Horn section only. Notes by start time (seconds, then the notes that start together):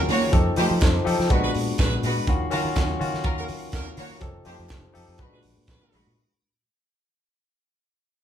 1.43 F#4 G#4 B4
1.79 F#4 G#4 B4
3.38 A#3 F#4 A#4
3.73 A#3 F#4 A#4
5.32 F#4 G#4 B4
5.68 F#4 G#4 B4